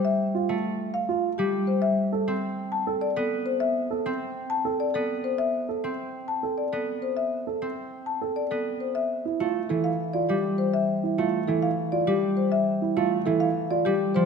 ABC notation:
X:1
M:3/4
L:1/16
Q:1/4=101
K:Ddor
V:1 name="Marimba"
e z4 z f z2 G z c | e z4 z a z d A z c | e z4 z a z d A z c | e z4 z a z d A z c |
e z4 z a z d A z c | e z4 A f z d G z c | e z4 A f z d G z c | e z4 A f z d G z c |]
V:2 name="Grand piano"
z2 F z4 F z4 | z2 A z4 A z4 | z2 A z4 A z4 | z2 A z4 A z4 |
z2 A z4 A z4 | z2 E F z E z2 F z3 | z2 E F z E z2 F z3 | z2 E F z E z2 F z3 |]
V:3 name="Harp"
[G,A,]3 A,6 G,3 | z3 C6 B,3- | B,3 C6 B,3- | B,3 C6 B,3- |
B,3 C6 B,3 | z3 A,2 E,4 G,3- | G,3 A,2 E,4 G,3- | G,3 A,2 E,4 G,2 F, |]